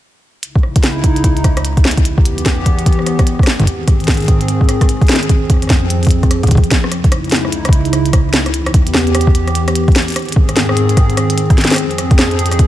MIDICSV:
0, 0, Header, 1, 3, 480
1, 0, Start_track
1, 0, Key_signature, 4, "minor"
1, 0, Tempo, 405405
1, 509, Time_signature, 4, 2, 24, 8
1, 15001, End_track
2, 0, Start_track
2, 0, Title_t, "Analog synth pad"
2, 0, Program_c, 0, 89
2, 509, Note_on_c, 0, 37, 83
2, 509, Note_on_c, 0, 63, 73
2, 510, Note_on_c, 0, 49, 74
2, 510, Note_on_c, 0, 64, 88
2, 2410, Note_off_c, 0, 37, 0
2, 2410, Note_off_c, 0, 49, 0
2, 2410, Note_off_c, 0, 63, 0
2, 2410, Note_off_c, 0, 64, 0
2, 2431, Note_on_c, 0, 40, 84
2, 2431, Note_on_c, 0, 52, 74
2, 2431, Note_on_c, 0, 59, 75
2, 2431, Note_on_c, 0, 67, 87
2, 4331, Note_off_c, 0, 40, 0
2, 4331, Note_off_c, 0, 52, 0
2, 4331, Note_off_c, 0, 59, 0
2, 4331, Note_off_c, 0, 67, 0
2, 4348, Note_on_c, 0, 44, 80
2, 4348, Note_on_c, 0, 51, 74
2, 4348, Note_on_c, 0, 60, 73
2, 4348, Note_on_c, 0, 68, 89
2, 6249, Note_off_c, 0, 44, 0
2, 6250, Note_off_c, 0, 51, 0
2, 6250, Note_off_c, 0, 60, 0
2, 6267, Note_on_c, 0, 60, 76
2, 6268, Note_on_c, 0, 53, 76
2, 6269, Note_on_c, 0, 41, 83
2, 8150, Note_off_c, 0, 68, 0
2, 8169, Note_off_c, 0, 53, 0
2, 8169, Note_off_c, 0, 60, 0
2, 8170, Note_off_c, 0, 41, 0
2, 8188, Note_on_c, 0, 37, 84
2, 8188, Note_on_c, 0, 63, 77
2, 8188, Note_on_c, 0, 64, 90
2, 8189, Note_on_c, 0, 49, 77
2, 10089, Note_off_c, 0, 37, 0
2, 10089, Note_off_c, 0, 63, 0
2, 10089, Note_off_c, 0, 64, 0
2, 10090, Note_off_c, 0, 49, 0
2, 10110, Note_on_c, 0, 40, 84
2, 10110, Note_on_c, 0, 52, 79
2, 10110, Note_on_c, 0, 59, 76
2, 10110, Note_on_c, 0, 67, 94
2, 12010, Note_off_c, 0, 40, 0
2, 12010, Note_off_c, 0, 52, 0
2, 12010, Note_off_c, 0, 59, 0
2, 12010, Note_off_c, 0, 67, 0
2, 12029, Note_on_c, 0, 51, 74
2, 12030, Note_on_c, 0, 44, 84
2, 12030, Note_on_c, 0, 60, 75
2, 12030, Note_on_c, 0, 68, 91
2, 13930, Note_off_c, 0, 44, 0
2, 13930, Note_off_c, 0, 51, 0
2, 13930, Note_off_c, 0, 68, 0
2, 13950, Note_on_c, 0, 41, 84
2, 13950, Note_on_c, 0, 53, 77
2, 13950, Note_on_c, 0, 68, 94
2, 15001, Note_off_c, 0, 41, 0
2, 15001, Note_off_c, 0, 53, 0
2, 15001, Note_off_c, 0, 60, 0
2, 15001, Note_off_c, 0, 68, 0
2, 15001, End_track
3, 0, Start_track
3, 0, Title_t, "Drums"
3, 509, Note_on_c, 9, 42, 73
3, 627, Note_off_c, 9, 42, 0
3, 657, Note_on_c, 9, 36, 93
3, 749, Note_on_c, 9, 37, 32
3, 775, Note_off_c, 9, 36, 0
3, 867, Note_off_c, 9, 37, 0
3, 897, Note_on_c, 9, 36, 102
3, 897, Note_on_c, 9, 42, 74
3, 989, Note_off_c, 9, 42, 0
3, 989, Note_on_c, 9, 38, 103
3, 989, Note_on_c, 9, 42, 73
3, 1015, Note_off_c, 9, 36, 0
3, 1107, Note_off_c, 9, 38, 0
3, 1107, Note_off_c, 9, 42, 0
3, 1228, Note_on_c, 9, 36, 91
3, 1229, Note_on_c, 9, 42, 72
3, 1347, Note_off_c, 9, 36, 0
3, 1347, Note_off_c, 9, 42, 0
3, 1378, Note_on_c, 9, 42, 47
3, 1468, Note_on_c, 9, 36, 88
3, 1469, Note_off_c, 9, 42, 0
3, 1469, Note_on_c, 9, 42, 72
3, 1587, Note_off_c, 9, 36, 0
3, 1587, Note_off_c, 9, 42, 0
3, 1618, Note_on_c, 9, 42, 33
3, 1708, Note_on_c, 9, 36, 102
3, 1709, Note_off_c, 9, 42, 0
3, 1709, Note_on_c, 9, 37, 55
3, 1709, Note_on_c, 9, 42, 73
3, 1827, Note_off_c, 9, 36, 0
3, 1827, Note_off_c, 9, 37, 0
3, 1827, Note_off_c, 9, 42, 0
3, 1858, Note_on_c, 9, 37, 71
3, 1858, Note_on_c, 9, 42, 48
3, 1949, Note_off_c, 9, 42, 0
3, 1949, Note_on_c, 9, 42, 74
3, 1976, Note_off_c, 9, 37, 0
3, 2067, Note_off_c, 9, 42, 0
3, 2097, Note_on_c, 9, 36, 93
3, 2098, Note_on_c, 9, 42, 34
3, 2190, Note_on_c, 9, 37, 56
3, 2190, Note_on_c, 9, 38, 105
3, 2216, Note_off_c, 9, 36, 0
3, 2216, Note_off_c, 9, 42, 0
3, 2264, Note_on_c, 9, 42, 75
3, 2308, Note_off_c, 9, 37, 0
3, 2308, Note_off_c, 9, 38, 0
3, 2338, Note_off_c, 9, 42, 0
3, 2338, Note_on_c, 9, 36, 90
3, 2338, Note_on_c, 9, 42, 50
3, 2429, Note_off_c, 9, 42, 0
3, 2429, Note_on_c, 9, 42, 73
3, 2456, Note_off_c, 9, 36, 0
3, 2548, Note_off_c, 9, 42, 0
3, 2578, Note_on_c, 9, 36, 108
3, 2670, Note_on_c, 9, 42, 74
3, 2696, Note_off_c, 9, 36, 0
3, 2788, Note_off_c, 9, 42, 0
3, 2819, Note_on_c, 9, 42, 50
3, 2909, Note_on_c, 9, 36, 99
3, 2910, Note_off_c, 9, 42, 0
3, 2910, Note_on_c, 9, 38, 108
3, 2910, Note_on_c, 9, 42, 71
3, 3027, Note_off_c, 9, 36, 0
3, 3028, Note_off_c, 9, 38, 0
3, 3028, Note_off_c, 9, 42, 0
3, 3149, Note_on_c, 9, 36, 95
3, 3150, Note_on_c, 9, 42, 75
3, 3267, Note_off_c, 9, 36, 0
3, 3268, Note_off_c, 9, 42, 0
3, 3299, Note_on_c, 9, 42, 50
3, 3389, Note_on_c, 9, 36, 110
3, 3390, Note_off_c, 9, 42, 0
3, 3390, Note_on_c, 9, 42, 75
3, 3464, Note_off_c, 9, 42, 0
3, 3464, Note_on_c, 9, 42, 34
3, 3507, Note_off_c, 9, 36, 0
3, 3538, Note_on_c, 9, 37, 46
3, 3582, Note_off_c, 9, 42, 0
3, 3629, Note_off_c, 9, 37, 0
3, 3629, Note_on_c, 9, 37, 54
3, 3629, Note_on_c, 9, 42, 76
3, 3747, Note_off_c, 9, 37, 0
3, 3747, Note_off_c, 9, 42, 0
3, 3778, Note_on_c, 9, 36, 100
3, 3778, Note_on_c, 9, 37, 69
3, 3778, Note_on_c, 9, 42, 50
3, 3869, Note_off_c, 9, 42, 0
3, 3869, Note_on_c, 9, 42, 73
3, 3896, Note_off_c, 9, 36, 0
3, 3896, Note_off_c, 9, 37, 0
3, 3987, Note_off_c, 9, 42, 0
3, 4018, Note_on_c, 9, 36, 100
3, 4064, Note_on_c, 9, 37, 56
3, 4064, Note_on_c, 9, 42, 34
3, 4109, Note_off_c, 9, 42, 0
3, 4109, Note_on_c, 9, 38, 110
3, 4109, Note_on_c, 9, 42, 73
3, 4136, Note_off_c, 9, 36, 0
3, 4182, Note_off_c, 9, 37, 0
3, 4227, Note_off_c, 9, 38, 0
3, 4227, Note_off_c, 9, 42, 0
3, 4258, Note_on_c, 9, 36, 103
3, 4258, Note_on_c, 9, 42, 53
3, 4281, Note_off_c, 9, 36, 0
3, 4281, Note_on_c, 9, 36, 83
3, 4303, Note_off_c, 9, 36, 0
3, 4303, Note_on_c, 9, 36, 69
3, 4326, Note_off_c, 9, 36, 0
3, 4326, Note_on_c, 9, 36, 58
3, 4349, Note_off_c, 9, 42, 0
3, 4349, Note_on_c, 9, 42, 75
3, 4445, Note_off_c, 9, 36, 0
3, 4467, Note_off_c, 9, 42, 0
3, 4589, Note_on_c, 9, 36, 101
3, 4589, Note_on_c, 9, 37, 31
3, 4589, Note_on_c, 9, 42, 71
3, 4707, Note_off_c, 9, 36, 0
3, 4708, Note_off_c, 9, 37, 0
3, 4708, Note_off_c, 9, 42, 0
3, 4738, Note_on_c, 9, 42, 22
3, 4784, Note_off_c, 9, 42, 0
3, 4784, Note_on_c, 9, 42, 29
3, 4829, Note_off_c, 9, 42, 0
3, 4829, Note_on_c, 9, 36, 103
3, 4829, Note_on_c, 9, 38, 114
3, 4829, Note_on_c, 9, 42, 70
3, 4867, Note_off_c, 9, 42, 0
3, 4867, Note_on_c, 9, 42, 55
3, 4904, Note_off_c, 9, 42, 0
3, 4904, Note_on_c, 9, 42, 46
3, 4940, Note_off_c, 9, 42, 0
3, 4940, Note_on_c, 9, 42, 38
3, 4947, Note_off_c, 9, 36, 0
3, 4948, Note_off_c, 9, 38, 0
3, 4978, Note_off_c, 9, 42, 0
3, 4978, Note_on_c, 9, 42, 32
3, 5001, Note_off_c, 9, 42, 0
3, 5001, Note_on_c, 9, 42, 25
3, 5024, Note_off_c, 9, 42, 0
3, 5024, Note_on_c, 9, 42, 21
3, 5047, Note_off_c, 9, 42, 0
3, 5047, Note_on_c, 9, 42, 17
3, 5069, Note_off_c, 9, 42, 0
3, 5069, Note_on_c, 9, 36, 111
3, 5069, Note_on_c, 9, 42, 73
3, 5187, Note_off_c, 9, 36, 0
3, 5188, Note_off_c, 9, 42, 0
3, 5218, Note_on_c, 9, 42, 49
3, 5310, Note_off_c, 9, 42, 0
3, 5310, Note_on_c, 9, 42, 72
3, 5428, Note_off_c, 9, 42, 0
3, 5457, Note_on_c, 9, 36, 99
3, 5549, Note_on_c, 9, 37, 57
3, 5549, Note_on_c, 9, 42, 76
3, 5576, Note_off_c, 9, 36, 0
3, 5668, Note_off_c, 9, 37, 0
3, 5668, Note_off_c, 9, 42, 0
3, 5697, Note_on_c, 9, 36, 102
3, 5698, Note_on_c, 9, 37, 69
3, 5698, Note_on_c, 9, 42, 49
3, 5789, Note_off_c, 9, 42, 0
3, 5789, Note_on_c, 9, 42, 72
3, 5816, Note_off_c, 9, 36, 0
3, 5816, Note_off_c, 9, 37, 0
3, 5907, Note_off_c, 9, 42, 0
3, 5937, Note_on_c, 9, 36, 116
3, 5938, Note_on_c, 9, 42, 15
3, 5949, Note_off_c, 9, 42, 0
3, 5949, Note_on_c, 9, 42, 18
3, 5999, Note_off_c, 9, 42, 0
3, 5999, Note_on_c, 9, 42, 21
3, 6029, Note_off_c, 9, 42, 0
3, 6029, Note_on_c, 9, 37, 54
3, 6029, Note_on_c, 9, 38, 109
3, 6029, Note_on_c, 9, 42, 70
3, 6056, Note_off_c, 9, 36, 0
3, 6078, Note_off_c, 9, 38, 0
3, 6078, Note_off_c, 9, 42, 0
3, 6078, Note_on_c, 9, 38, 91
3, 6078, Note_on_c, 9, 42, 27
3, 6104, Note_off_c, 9, 42, 0
3, 6104, Note_on_c, 9, 42, 49
3, 6109, Note_off_c, 9, 38, 0
3, 6109, Note_off_c, 9, 42, 0
3, 6109, Note_on_c, 9, 38, 72
3, 6109, Note_on_c, 9, 42, 57
3, 6148, Note_off_c, 9, 37, 0
3, 6188, Note_off_c, 9, 42, 0
3, 6188, Note_on_c, 9, 42, 48
3, 6227, Note_off_c, 9, 38, 0
3, 6268, Note_on_c, 9, 36, 100
3, 6269, Note_off_c, 9, 42, 0
3, 6269, Note_on_c, 9, 42, 74
3, 6387, Note_off_c, 9, 36, 0
3, 6387, Note_off_c, 9, 42, 0
3, 6508, Note_on_c, 9, 36, 102
3, 6509, Note_on_c, 9, 37, 15
3, 6509, Note_on_c, 9, 42, 72
3, 6559, Note_off_c, 9, 37, 0
3, 6559, Note_on_c, 9, 37, 18
3, 6589, Note_off_c, 9, 37, 0
3, 6589, Note_on_c, 9, 37, 20
3, 6627, Note_off_c, 9, 36, 0
3, 6627, Note_off_c, 9, 42, 0
3, 6658, Note_off_c, 9, 37, 0
3, 6658, Note_on_c, 9, 37, 23
3, 6658, Note_on_c, 9, 42, 50
3, 6669, Note_off_c, 9, 37, 0
3, 6669, Note_on_c, 9, 37, 25
3, 6718, Note_off_c, 9, 37, 0
3, 6718, Note_on_c, 9, 37, 29
3, 6748, Note_off_c, 9, 42, 0
3, 6748, Note_on_c, 9, 38, 112
3, 6748, Note_on_c, 9, 42, 71
3, 6749, Note_on_c, 9, 36, 117
3, 6837, Note_off_c, 9, 37, 0
3, 6867, Note_off_c, 9, 36, 0
3, 6867, Note_off_c, 9, 38, 0
3, 6867, Note_off_c, 9, 42, 0
3, 6988, Note_on_c, 9, 42, 73
3, 7106, Note_off_c, 9, 42, 0
3, 7138, Note_on_c, 9, 42, 46
3, 7161, Note_off_c, 9, 42, 0
3, 7161, Note_on_c, 9, 42, 37
3, 7183, Note_off_c, 9, 42, 0
3, 7183, Note_on_c, 9, 36, 100
3, 7183, Note_on_c, 9, 42, 31
3, 7206, Note_off_c, 9, 42, 0
3, 7206, Note_on_c, 9, 42, 26
3, 7229, Note_off_c, 9, 42, 0
3, 7229, Note_on_c, 9, 42, 73
3, 7301, Note_off_c, 9, 36, 0
3, 7347, Note_off_c, 9, 42, 0
3, 7377, Note_on_c, 9, 36, 104
3, 7378, Note_on_c, 9, 37, 44
3, 7378, Note_on_c, 9, 42, 33
3, 7468, Note_off_c, 9, 37, 0
3, 7468, Note_off_c, 9, 42, 0
3, 7468, Note_on_c, 9, 37, 54
3, 7468, Note_on_c, 9, 42, 73
3, 7496, Note_off_c, 9, 36, 0
3, 7587, Note_off_c, 9, 37, 0
3, 7587, Note_off_c, 9, 42, 0
3, 7617, Note_on_c, 9, 36, 53
3, 7618, Note_on_c, 9, 37, 66
3, 7618, Note_on_c, 9, 42, 45
3, 7629, Note_off_c, 9, 36, 0
3, 7629, Note_on_c, 9, 36, 62
3, 7663, Note_off_c, 9, 42, 0
3, 7663, Note_on_c, 9, 42, 37
3, 7678, Note_off_c, 9, 36, 0
3, 7678, Note_on_c, 9, 36, 71
3, 7708, Note_off_c, 9, 36, 0
3, 7708, Note_on_c, 9, 36, 80
3, 7709, Note_off_c, 9, 42, 0
3, 7709, Note_on_c, 9, 42, 74
3, 7736, Note_off_c, 9, 37, 0
3, 7758, Note_off_c, 9, 36, 0
3, 7758, Note_on_c, 9, 36, 90
3, 7783, Note_off_c, 9, 42, 0
3, 7783, Note_on_c, 9, 42, 25
3, 7789, Note_off_c, 9, 36, 0
3, 7789, Note_on_c, 9, 36, 99
3, 7858, Note_off_c, 9, 42, 0
3, 7858, Note_on_c, 9, 42, 33
3, 7907, Note_off_c, 9, 36, 0
3, 7948, Note_on_c, 9, 36, 100
3, 7949, Note_off_c, 9, 42, 0
3, 7949, Note_on_c, 9, 38, 118
3, 7949, Note_on_c, 9, 42, 75
3, 8067, Note_off_c, 9, 36, 0
3, 8067, Note_off_c, 9, 38, 0
3, 8067, Note_off_c, 9, 42, 0
3, 8098, Note_on_c, 9, 37, 69
3, 8189, Note_off_c, 9, 37, 0
3, 8189, Note_on_c, 9, 37, 50
3, 8189, Note_on_c, 9, 42, 77
3, 8307, Note_off_c, 9, 37, 0
3, 8307, Note_off_c, 9, 42, 0
3, 8337, Note_on_c, 9, 36, 98
3, 8337, Note_on_c, 9, 42, 34
3, 8428, Note_off_c, 9, 42, 0
3, 8428, Note_on_c, 9, 37, 76
3, 8428, Note_on_c, 9, 42, 74
3, 8456, Note_off_c, 9, 36, 0
3, 8547, Note_off_c, 9, 37, 0
3, 8547, Note_off_c, 9, 42, 0
3, 8577, Note_on_c, 9, 42, 24
3, 8638, Note_off_c, 9, 42, 0
3, 8638, Note_on_c, 9, 42, 33
3, 8668, Note_off_c, 9, 42, 0
3, 8668, Note_on_c, 9, 38, 109
3, 8668, Note_on_c, 9, 42, 74
3, 8718, Note_off_c, 9, 42, 0
3, 8718, Note_on_c, 9, 42, 40
3, 8787, Note_off_c, 9, 38, 0
3, 8817, Note_on_c, 9, 37, 51
3, 8836, Note_off_c, 9, 42, 0
3, 8909, Note_on_c, 9, 42, 79
3, 8936, Note_off_c, 9, 37, 0
3, 9027, Note_off_c, 9, 42, 0
3, 9058, Note_on_c, 9, 37, 77
3, 9058, Note_on_c, 9, 42, 52
3, 9103, Note_on_c, 9, 36, 111
3, 9149, Note_off_c, 9, 42, 0
3, 9149, Note_on_c, 9, 42, 76
3, 9176, Note_off_c, 9, 37, 0
3, 9221, Note_off_c, 9, 36, 0
3, 9267, Note_off_c, 9, 42, 0
3, 9297, Note_on_c, 9, 42, 34
3, 9389, Note_off_c, 9, 42, 0
3, 9389, Note_on_c, 9, 37, 52
3, 9389, Note_on_c, 9, 42, 78
3, 9507, Note_off_c, 9, 37, 0
3, 9507, Note_off_c, 9, 42, 0
3, 9538, Note_on_c, 9, 42, 49
3, 9629, Note_off_c, 9, 42, 0
3, 9629, Note_on_c, 9, 36, 98
3, 9629, Note_on_c, 9, 37, 76
3, 9629, Note_on_c, 9, 42, 80
3, 9747, Note_off_c, 9, 36, 0
3, 9747, Note_off_c, 9, 37, 0
3, 9747, Note_off_c, 9, 42, 0
3, 9869, Note_on_c, 9, 38, 113
3, 9869, Note_on_c, 9, 42, 78
3, 9987, Note_off_c, 9, 38, 0
3, 9987, Note_off_c, 9, 42, 0
3, 10018, Note_on_c, 9, 37, 53
3, 10018, Note_on_c, 9, 42, 52
3, 10109, Note_off_c, 9, 42, 0
3, 10109, Note_on_c, 9, 42, 77
3, 10136, Note_off_c, 9, 37, 0
3, 10228, Note_off_c, 9, 42, 0
3, 10258, Note_on_c, 9, 37, 74
3, 10258, Note_on_c, 9, 42, 35
3, 10349, Note_on_c, 9, 36, 114
3, 10350, Note_off_c, 9, 42, 0
3, 10350, Note_on_c, 9, 42, 79
3, 10377, Note_off_c, 9, 37, 0
3, 10467, Note_off_c, 9, 36, 0
3, 10468, Note_off_c, 9, 42, 0
3, 10498, Note_on_c, 9, 42, 52
3, 10590, Note_on_c, 9, 37, 49
3, 10590, Note_on_c, 9, 38, 114
3, 10616, Note_off_c, 9, 42, 0
3, 10708, Note_off_c, 9, 37, 0
3, 10708, Note_off_c, 9, 38, 0
3, 10738, Note_on_c, 9, 42, 36
3, 10829, Note_off_c, 9, 42, 0
3, 10829, Note_on_c, 9, 37, 77
3, 10829, Note_on_c, 9, 42, 80
3, 10904, Note_off_c, 9, 42, 0
3, 10904, Note_on_c, 9, 42, 51
3, 10948, Note_off_c, 9, 37, 0
3, 10978, Note_on_c, 9, 36, 100
3, 11022, Note_off_c, 9, 42, 0
3, 11069, Note_on_c, 9, 42, 77
3, 11096, Note_off_c, 9, 36, 0
3, 11188, Note_off_c, 9, 42, 0
3, 11219, Note_on_c, 9, 37, 50
3, 11219, Note_on_c, 9, 42, 36
3, 11310, Note_off_c, 9, 42, 0
3, 11310, Note_on_c, 9, 42, 77
3, 11337, Note_off_c, 9, 37, 0
3, 11428, Note_off_c, 9, 42, 0
3, 11458, Note_on_c, 9, 37, 75
3, 11458, Note_on_c, 9, 42, 51
3, 11549, Note_off_c, 9, 42, 0
3, 11549, Note_on_c, 9, 42, 77
3, 11577, Note_off_c, 9, 37, 0
3, 11668, Note_off_c, 9, 42, 0
3, 11698, Note_on_c, 9, 36, 117
3, 11699, Note_on_c, 9, 42, 16
3, 11744, Note_off_c, 9, 42, 0
3, 11744, Note_on_c, 9, 42, 20
3, 11790, Note_off_c, 9, 42, 0
3, 11790, Note_on_c, 9, 37, 49
3, 11790, Note_on_c, 9, 38, 115
3, 11790, Note_on_c, 9, 42, 76
3, 11816, Note_off_c, 9, 36, 0
3, 11865, Note_off_c, 9, 42, 0
3, 11865, Note_on_c, 9, 42, 30
3, 11908, Note_off_c, 9, 37, 0
3, 11908, Note_off_c, 9, 38, 0
3, 11939, Note_off_c, 9, 42, 0
3, 11939, Note_on_c, 9, 42, 51
3, 11961, Note_off_c, 9, 42, 0
3, 11961, Note_on_c, 9, 42, 43
3, 11984, Note_off_c, 9, 42, 0
3, 11984, Note_on_c, 9, 42, 35
3, 12007, Note_off_c, 9, 42, 0
3, 12007, Note_on_c, 9, 42, 28
3, 12030, Note_off_c, 9, 42, 0
3, 12030, Note_on_c, 9, 37, 72
3, 12030, Note_on_c, 9, 42, 80
3, 12067, Note_off_c, 9, 42, 0
3, 12067, Note_on_c, 9, 42, 18
3, 12104, Note_off_c, 9, 42, 0
3, 12104, Note_on_c, 9, 42, 15
3, 12141, Note_off_c, 9, 42, 0
3, 12141, Note_on_c, 9, 42, 12
3, 12148, Note_off_c, 9, 37, 0
3, 12178, Note_off_c, 9, 42, 0
3, 12178, Note_on_c, 9, 42, 35
3, 12223, Note_off_c, 9, 42, 0
3, 12223, Note_on_c, 9, 42, 72
3, 12269, Note_on_c, 9, 36, 104
3, 12342, Note_off_c, 9, 42, 0
3, 12387, Note_off_c, 9, 36, 0
3, 12418, Note_on_c, 9, 37, 50
3, 12418, Note_on_c, 9, 42, 52
3, 12509, Note_off_c, 9, 42, 0
3, 12509, Note_on_c, 9, 38, 111
3, 12509, Note_on_c, 9, 42, 74
3, 12536, Note_off_c, 9, 37, 0
3, 12627, Note_off_c, 9, 38, 0
3, 12627, Note_off_c, 9, 42, 0
3, 12657, Note_on_c, 9, 37, 74
3, 12749, Note_on_c, 9, 42, 78
3, 12776, Note_off_c, 9, 37, 0
3, 12867, Note_off_c, 9, 42, 0
3, 12898, Note_on_c, 9, 42, 50
3, 12989, Note_off_c, 9, 42, 0
3, 12989, Note_on_c, 9, 36, 112
3, 12989, Note_on_c, 9, 37, 49
3, 12989, Note_on_c, 9, 42, 75
3, 13107, Note_off_c, 9, 36, 0
3, 13108, Note_off_c, 9, 37, 0
3, 13108, Note_off_c, 9, 42, 0
3, 13138, Note_on_c, 9, 42, 35
3, 13229, Note_off_c, 9, 42, 0
3, 13229, Note_on_c, 9, 37, 72
3, 13229, Note_on_c, 9, 42, 75
3, 13347, Note_off_c, 9, 37, 0
3, 13347, Note_off_c, 9, 42, 0
3, 13378, Note_on_c, 9, 42, 50
3, 13469, Note_off_c, 9, 42, 0
3, 13469, Note_on_c, 9, 42, 79
3, 13588, Note_off_c, 9, 42, 0
3, 13618, Note_on_c, 9, 36, 104
3, 13618, Note_on_c, 9, 37, 48
3, 13618, Note_on_c, 9, 42, 35
3, 13710, Note_off_c, 9, 42, 0
3, 13710, Note_on_c, 9, 38, 51
3, 13710, Note_on_c, 9, 42, 34
3, 13736, Note_off_c, 9, 36, 0
3, 13737, Note_off_c, 9, 37, 0
3, 13746, Note_off_c, 9, 42, 0
3, 13746, Note_on_c, 9, 42, 40
3, 13784, Note_off_c, 9, 42, 0
3, 13784, Note_on_c, 9, 42, 44
3, 13789, Note_off_c, 9, 38, 0
3, 13789, Note_on_c, 9, 38, 72
3, 13821, Note_off_c, 9, 42, 0
3, 13821, Note_on_c, 9, 42, 47
3, 13858, Note_off_c, 9, 42, 0
3, 13858, Note_on_c, 9, 37, 34
3, 13858, Note_on_c, 9, 42, 56
3, 13869, Note_off_c, 9, 38, 0
3, 13869, Note_on_c, 9, 38, 96
3, 13881, Note_off_c, 9, 37, 0
3, 13881, Note_off_c, 9, 42, 0
3, 13881, Note_on_c, 9, 37, 43
3, 13881, Note_on_c, 9, 42, 62
3, 13904, Note_off_c, 9, 37, 0
3, 13904, Note_off_c, 9, 42, 0
3, 13904, Note_on_c, 9, 37, 52
3, 13904, Note_on_c, 9, 42, 67
3, 13926, Note_off_c, 9, 37, 0
3, 13926, Note_off_c, 9, 42, 0
3, 13926, Note_on_c, 9, 37, 61
3, 13926, Note_on_c, 9, 42, 70
3, 13949, Note_off_c, 9, 42, 0
3, 13949, Note_on_c, 9, 42, 75
3, 13987, Note_off_c, 9, 38, 0
3, 14044, Note_off_c, 9, 37, 0
3, 14067, Note_off_c, 9, 42, 0
3, 14098, Note_on_c, 9, 42, 33
3, 14189, Note_off_c, 9, 42, 0
3, 14189, Note_on_c, 9, 37, 47
3, 14189, Note_on_c, 9, 42, 75
3, 14308, Note_off_c, 9, 37, 0
3, 14308, Note_off_c, 9, 42, 0
3, 14337, Note_on_c, 9, 42, 51
3, 14338, Note_on_c, 9, 36, 116
3, 14429, Note_off_c, 9, 42, 0
3, 14429, Note_on_c, 9, 37, 70
3, 14429, Note_on_c, 9, 38, 114
3, 14429, Note_on_c, 9, 42, 74
3, 14456, Note_off_c, 9, 36, 0
3, 14548, Note_off_c, 9, 37, 0
3, 14548, Note_off_c, 9, 38, 0
3, 14548, Note_off_c, 9, 42, 0
3, 14578, Note_on_c, 9, 42, 35
3, 14669, Note_off_c, 9, 42, 0
3, 14669, Note_on_c, 9, 42, 69
3, 14749, Note_off_c, 9, 42, 0
3, 14749, Note_on_c, 9, 42, 58
3, 14818, Note_off_c, 9, 42, 0
3, 14818, Note_on_c, 9, 37, 48
3, 14818, Note_on_c, 9, 42, 48
3, 14829, Note_off_c, 9, 42, 0
3, 14829, Note_on_c, 9, 42, 47
3, 14909, Note_off_c, 9, 42, 0
3, 14909, Note_on_c, 9, 36, 101
3, 14909, Note_on_c, 9, 42, 74
3, 14936, Note_off_c, 9, 37, 0
3, 15001, Note_off_c, 9, 36, 0
3, 15001, Note_off_c, 9, 42, 0
3, 15001, End_track
0, 0, End_of_file